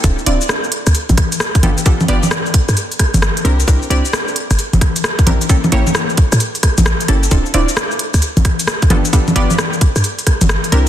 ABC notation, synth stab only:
X:1
M:4/4
L:1/16
Q:"Swing 16ths" 1/4=132
K:Gdor
V:1 name="Synth stab"
[CDEFA]2 [CDEFd] z8 z3 [=B,DFGA]2 | [=B,DFGA]2 [B,DFGd] z8 z3 [CDEG_B]2 | [CDEGB]2 [CDEGd] z8 z3 [CDEGB]2 | [B,^CEGA]2 [B,CEG^c] z8 z3 [B,CEGA]2 |
[CDEFA]2 [CDEFd] z8 z3 [=B,DFGA]2 | [=B,DFGA]2 [B,DFGd] z8 z3 [CDEG_B]2 |]